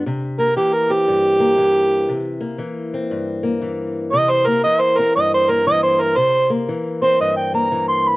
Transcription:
0, 0, Header, 1, 3, 480
1, 0, Start_track
1, 0, Tempo, 511073
1, 39, Time_signature, 4, 2, 24, 8
1, 7670, End_track
2, 0, Start_track
2, 0, Title_t, "Harmonica"
2, 0, Program_c, 0, 22
2, 372, Note_on_c, 0, 70, 78
2, 520, Note_off_c, 0, 70, 0
2, 532, Note_on_c, 0, 67, 72
2, 692, Note_on_c, 0, 70, 75
2, 706, Note_off_c, 0, 67, 0
2, 862, Note_on_c, 0, 67, 83
2, 876, Note_off_c, 0, 70, 0
2, 2246, Note_off_c, 0, 67, 0
2, 3876, Note_on_c, 0, 75, 91
2, 4041, Note_on_c, 0, 72, 83
2, 4055, Note_off_c, 0, 75, 0
2, 4194, Note_on_c, 0, 70, 73
2, 4208, Note_off_c, 0, 72, 0
2, 4346, Note_off_c, 0, 70, 0
2, 4354, Note_on_c, 0, 75, 93
2, 4514, Note_on_c, 0, 72, 82
2, 4528, Note_off_c, 0, 75, 0
2, 4678, Note_on_c, 0, 70, 77
2, 4692, Note_off_c, 0, 72, 0
2, 4828, Note_off_c, 0, 70, 0
2, 4845, Note_on_c, 0, 75, 86
2, 4992, Note_off_c, 0, 75, 0
2, 5015, Note_on_c, 0, 72, 89
2, 5164, Note_on_c, 0, 70, 80
2, 5178, Note_off_c, 0, 72, 0
2, 5312, Note_off_c, 0, 70, 0
2, 5324, Note_on_c, 0, 75, 89
2, 5469, Note_off_c, 0, 75, 0
2, 5475, Note_on_c, 0, 72, 77
2, 5645, Note_on_c, 0, 70, 85
2, 5659, Note_off_c, 0, 72, 0
2, 5793, Note_on_c, 0, 72, 98
2, 5807, Note_off_c, 0, 70, 0
2, 6089, Note_off_c, 0, 72, 0
2, 6603, Note_on_c, 0, 72, 96
2, 6754, Note_off_c, 0, 72, 0
2, 6769, Note_on_c, 0, 75, 77
2, 6911, Note_off_c, 0, 75, 0
2, 6917, Note_on_c, 0, 79, 74
2, 7071, Note_off_c, 0, 79, 0
2, 7086, Note_on_c, 0, 82, 84
2, 7392, Note_off_c, 0, 82, 0
2, 7403, Note_on_c, 0, 84, 81
2, 7588, Note_on_c, 0, 83, 108
2, 7602, Note_off_c, 0, 84, 0
2, 7670, Note_off_c, 0, 83, 0
2, 7670, End_track
3, 0, Start_track
3, 0, Title_t, "Steel-string acoustic guitar"
3, 0, Program_c, 1, 25
3, 59, Note_on_c, 1, 48, 72
3, 363, Note_on_c, 1, 58, 59
3, 527, Note_off_c, 1, 48, 0
3, 529, Note_on_c, 1, 52, 62
3, 841, Note_on_c, 1, 60, 55
3, 1012, Note_on_c, 1, 43, 66
3, 1308, Note_off_c, 1, 58, 0
3, 1312, Note_on_c, 1, 58, 56
3, 1476, Note_off_c, 1, 52, 0
3, 1480, Note_on_c, 1, 52, 61
3, 1939, Note_off_c, 1, 43, 0
3, 1958, Note_on_c, 1, 48, 67
3, 1987, Note_off_c, 1, 58, 0
3, 2260, Note_on_c, 1, 58, 56
3, 2288, Note_off_c, 1, 52, 0
3, 2288, Note_off_c, 1, 60, 0
3, 2426, Note_on_c, 1, 52, 68
3, 2433, Note_off_c, 1, 48, 0
3, 2758, Note_on_c, 1, 60, 57
3, 2921, Note_on_c, 1, 43, 64
3, 3218, Note_off_c, 1, 58, 0
3, 3222, Note_on_c, 1, 58, 58
3, 3393, Note_off_c, 1, 52, 0
3, 3397, Note_on_c, 1, 52, 57
3, 3853, Note_off_c, 1, 43, 0
3, 3879, Note_on_c, 1, 48, 71
3, 3908, Note_off_c, 1, 58, 0
3, 4199, Note_on_c, 1, 58, 61
3, 4227, Note_off_c, 1, 52, 0
3, 4227, Note_off_c, 1, 60, 0
3, 4353, Note_off_c, 1, 48, 0
3, 4373, Note_on_c, 1, 52, 69
3, 4686, Note_on_c, 1, 60, 56
3, 4848, Note_on_c, 1, 43, 67
3, 5144, Note_off_c, 1, 58, 0
3, 5156, Note_on_c, 1, 58, 58
3, 5310, Note_off_c, 1, 52, 0
3, 5321, Note_on_c, 1, 52, 63
3, 5775, Note_off_c, 1, 52, 0
3, 5779, Note_off_c, 1, 43, 0
3, 5780, Note_off_c, 1, 58, 0
3, 5785, Note_off_c, 1, 60, 0
3, 5793, Note_on_c, 1, 48, 68
3, 6104, Note_on_c, 1, 58, 60
3, 6273, Note_off_c, 1, 48, 0
3, 6279, Note_on_c, 1, 52, 62
3, 6591, Note_on_c, 1, 60, 61
3, 6763, Note_on_c, 1, 43, 62
3, 7064, Note_off_c, 1, 58, 0
3, 7080, Note_on_c, 1, 58, 57
3, 7236, Note_off_c, 1, 52, 0
3, 7247, Note_on_c, 1, 52, 55
3, 7670, Note_off_c, 1, 43, 0
3, 7670, Note_off_c, 1, 52, 0
3, 7670, Note_off_c, 1, 58, 0
3, 7670, Note_off_c, 1, 60, 0
3, 7670, End_track
0, 0, End_of_file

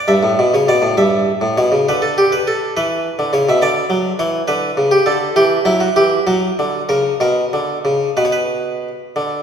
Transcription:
0, 0, Header, 1, 2, 480
1, 0, Start_track
1, 0, Key_signature, 2, "minor"
1, 0, Tempo, 596421
1, 64, Time_signature, 12, 3, 24, 8
1, 1984, Tempo, 581395
1, 4864, Tempo, 621762
1, 5824, Tempo, 653595
1, 7462, End_track
2, 0, Start_track
2, 0, Title_t, "Harpsichord"
2, 0, Program_c, 0, 6
2, 63, Note_on_c, 0, 43, 53
2, 64, Note_on_c, 0, 76, 78
2, 177, Note_off_c, 0, 43, 0
2, 182, Note_on_c, 0, 45, 47
2, 296, Note_off_c, 0, 45, 0
2, 315, Note_on_c, 0, 47, 54
2, 422, Note_off_c, 0, 47, 0
2, 422, Note_off_c, 0, 76, 0
2, 433, Note_on_c, 0, 49, 49
2, 439, Note_on_c, 0, 73, 69
2, 541, Note_off_c, 0, 49, 0
2, 549, Note_off_c, 0, 73, 0
2, 550, Note_on_c, 0, 47, 52
2, 553, Note_on_c, 0, 74, 73
2, 658, Note_off_c, 0, 47, 0
2, 660, Note_on_c, 0, 45, 46
2, 750, Note_off_c, 0, 74, 0
2, 773, Note_off_c, 0, 45, 0
2, 783, Note_on_c, 0, 43, 50
2, 786, Note_on_c, 0, 76, 78
2, 1043, Note_off_c, 0, 43, 0
2, 1138, Note_on_c, 0, 45, 54
2, 1195, Note_off_c, 0, 76, 0
2, 1256, Note_off_c, 0, 45, 0
2, 1268, Note_on_c, 0, 73, 75
2, 1269, Note_on_c, 0, 47, 53
2, 1382, Note_off_c, 0, 47, 0
2, 1383, Note_on_c, 0, 49, 54
2, 1472, Note_off_c, 0, 73, 0
2, 1499, Note_off_c, 0, 49, 0
2, 1518, Note_on_c, 0, 50, 57
2, 1518, Note_on_c, 0, 71, 72
2, 1626, Note_on_c, 0, 69, 72
2, 1632, Note_off_c, 0, 71, 0
2, 1746, Note_off_c, 0, 69, 0
2, 1753, Note_on_c, 0, 67, 77
2, 1869, Note_off_c, 0, 67, 0
2, 1870, Note_on_c, 0, 71, 77
2, 1986, Note_off_c, 0, 71, 0
2, 1992, Note_on_c, 0, 69, 80
2, 2027, Note_off_c, 0, 50, 0
2, 2192, Note_off_c, 0, 69, 0
2, 2233, Note_on_c, 0, 52, 61
2, 2233, Note_on_c, 0, 71, 86
2, 2486, Note_off_c, 0, 52, 0
2, 2582, Note_on_c, 0, 50, 54
2, 2693, Note_off_c, 0, 50, 0
2, 2698, Note_on_c, 0, 49, 58
2, 2702, Note_off_c, 0, 71, 0
2, 2702, Note_on_c, 0, 73, 83
2, 2810, Note_off_c, 0, 49, 0
2, 2818, Note_off_c, 0, 73, 0
2, 2827, Note_on_c, 0, 47, 61
2, 2832, Note_on_c, 0, 76, 78
2, 2935, Note_off_c, 0, 47, 0
2, 2936, Note_on_c, 0, 50, 66
2, 2940, Note_on_c, 0, 74, 91
2, 2943, Note_off_c, 0, 76, 0
2, 3107, Note_off_c, 0, 50, 0
2, 3167, Note_on_c, 0, 54, 60
2, 3341, Note_off_c, 0, 54, 0
2, 3410, Note_on_c, 0, 73, 87
2, 3412, Note_on_c, 0, 52, 65
2, 3414, Note_off_c, 0, 74, 0
2, 3584, Note_off_c, 0, 52, 0
2, 3644, Note_on_c, 0, 71, 88
2, 3649, Note_off_c, 0, 73, 0
2, 3649, Note_on_c, 0, 50, 66
2, 3822, Note_off_c, 0, 50, 0
2, 3890, Note_on_c, 0, 49, 57
2, 4005, Note_on_c, 0, 67, 77
2, 4007, Note_off_c, 0, 71, 0
2, 4063, Note_off_c, 0, 49, 0
2, 4127, Note_on_c, 0, 69, 83
2, 4128, Note_off_c, 0, 67, 0
2, 4130, Note_on_c, 0, 50, 57
2, 4304, Note_off_c, 0, 50, 0
2, 4370, Note_off_c, 0, 69, 0
2, 4375, Note_on_c, 0, 52, 68
2, 4375, Note_on_c, 0, 67, 91
2, 4549, Note_off_c, 0, 52, 0
2, 4581, Note_off_c, 0, 67, 0
2, 4615, Note_on_c, 0, 54, 61
2, 4617, Note_on_c, 0, 64, 87
2, 4740, Note_off_c, 0, 64, 0
2, 4740, Note_on_c, 0, 66, 77
2, 4795, Note_off_c, 0, 54, 0
2, 4865, Note_off_c, 0, 66, 0
2, 4870, Note_on_c, 0, 52, 60
2, 4871, Note_on_c, 0, 67, 81
2, 5039, Note_off_c, 0, 52, 0
2, 5070, Note_off_c, 0, 67, 0
2, 5106, Note_on_c, 0, 66, 76
2, 5107, Note_on_c, 0, 54, 60
2, 5276, Note_off_c, 0, 54, 0
2, 5356, Note_on_c, 0, 50, 54
2, 5523, Note_off_c, 0, 50, 0
2, 5582, Note_off_c, 0, 66, 0
2, 5586, Note_on_c, 0, 70, 73
2, 5589, Note_on_c, 0, 49, 52
2, 5762, Note_off_c, 0, 49, 0
2, 5791, Note_off_c, 0, 70, 0
2, 5829, Note_on_c, 0, 47, 50
2, 5833, Note_on_c, 0, 70, 72
2, 5998, Note_off_c, 0, 47, 0
2, 6071, Note_on_c, 0, 50, 50
2, 6239, Note_off_c, 0, 50, 0
2, 6302, Note_on_c, 0, 49, 50
2, 6438, Note_off_c, 0, 70, 0
2, 6475, Note_off_c, 0, 49, 0
2, 6537, Note_on_c, 0, 71, 54
2, 6540, Note_on_c, 0, 47, 47
2, 6595, Note_off_c, 0, 71, 0
2, 6596, Note_on_c, 0, 73, 46
2, 6652, Note_off_c, 0, 73, 0
2, 6652, Note_on_c, 0, 71, 54
2, 7060, Note_off_c, 0, 47, 0
2, 7266, Note_on_c, 0, 50, 48
2, 7439, Note_off_c, 0, 50, 0
2, 7462, Note_off_c, 0, 71, 0
2, 7462, End_track
0, 0, End_of_file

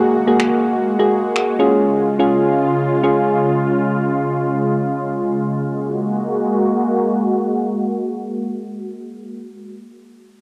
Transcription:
0, 0, Header, 1, 5, 480
1, 0, Start_track
1, 0, Key_signature, 6, "major"
1, 0, Tempo, 500000
1, 9994, End_track
2, 0, Start_track
2, 0, Title_t, "Synth keys"
2, 0, Program_c, 0, 88
2, 0, Note_on_c, 0, 58, 80
2, 0, Note_on_c, 0, 66, 78
2, 0, Note_on_c, 0, 68, 93
2, 142, Note_off_c, 0, 58, 0
2, 143, Note_off_c, 0, 66, 0
2, 144, Note_off_c, 0, 68, 0
2, 262, Note_on_c, 0, 58, 91
2, 265, Note_on_c, 0, 66, 76
2, 267, Note_on_c, 0, 68, 99
2, 711, Note_off_c, 0, 58, 0
2, 712, Note_off_c, 0, 66, 0
2, 713, Note_off_c, 0, 68, 0
2, 952, Note_on_c, 0, 58, 85
2, 955, Note_on_c, 0, 66, 80
2, 957, Note_on_c, 0, 68, 93
2, 1476, Note_off_c, 0, 58, 0
2, 1477, Note_off_c, 0, 66, 0
2, 1478, Note_off_c, 0, 68, 0
2, 1528, Note_on_c, 0, 61, 91
2, 1531, Note_on_c, 0, 65, 79
2, 1534, Note_on_c, 0, 68, 95
2, 1991, Note_off_c, 0, 61, 0
2, 1992, Note_off_c, 0, 65, 0
2, 1994, Note_off_c, 0, 68, 0
2, 2105, Note_on_c, 0, 61, 88
2, 2107, Note_on_c, 0, 65, 77
2, 2110, Note_on_c, 0, 68, 95
2, 2628, Note_off_c, 0, 61, 0
2, 2630, Note_off_c, 0, 65, 0
2, 2631, Note_off_c, 0, 68, 0
2, 2912, Note_on_c, 0, 61, 81
2, 2914, Note_on_c, 0, 65, 80
2, 2916, Note_on_c, 0, 68, 96
2, 3361, Note_off_c, 0, 61, 0
2, 3362, Note_off_c, 0, 65, 0
2, 3363, Note_off_c, 0, 68, 0
2, 9994, End_track
3, 0, Start_track
3, 0, Title_t, "Analog synth pad"
3, 0, Program_c, 1, 89
3, 0, Note_on_c, 1, 56, 77
3, 0, Note_on_c, 1, 58, 69
3, 0, Note_on_c, 1, 66, 89
3, 1498, Note_off_c, 1, 58, 0
3, 1498, Note_off_c, 1, 66, 0
3, 1532, Note_on_c, 1, 49, 75
3, 1532, Note_on_c, 1, 65, 85
3, 5410, Note_off_c, 1, 49, 0
3, 5410, Note_off_c, 1, 65, 0
3, 5411, Note_off_c, 1, 56, 0
3, 5450, Note_on_c, 1, 66, 83
3, 5451, Note_on_c, 1, 56, 77
3, 5451, Note_on_c, 1, 58, 68
3, 9223, Note_off_c, 1, 56, 0
3, 9223, Note_off_c, 1, 58, 0
3, 9223, Note_off_c, 1, 66, 0
3, 9994, End_track
4, 0, Start_track
4, 0, Title_t, "Downlifter"
4, 0, Program_c, 2, 103
4, 0, Note_on_c, 2, 60, 82
4, 1763, Note_off_c, 2, 60, 0
4, 9994, End_track
5, 0, Start_track
5, 0, Title_t, "Drums"
5, 379, Note_on_c, 9, 26, 107
5, 475, Note_off_c, 9, 26, 0
5, 1303, Note_on_c, 9, 26, 90
5, 1399, Note_off_c, 9, 26, 0
5, 9994, End_track
0, 0, End_of_file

